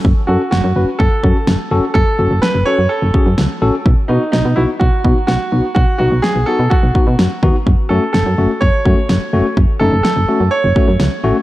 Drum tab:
SD |--o---o-|--o---o-|--o---o-|--o---o-|
BD |o---oo--|o----o--|o---oo--|o---oo-o|

SD |--o---o-|--o---o-|
BD |o---oo--|o----o--|